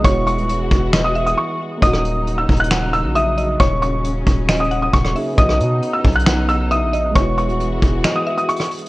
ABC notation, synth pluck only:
X:1
M:4/4
L:1/8
Q:1/4=135
K:Ebphr
V:1 name="Synth pluck"
d2 z2 e =e z2 | e2 z2 g2 f e | d2 z2 e g2 f | ^d2 z2 ^f2 _f d |
d2 z2 e =e z2 |]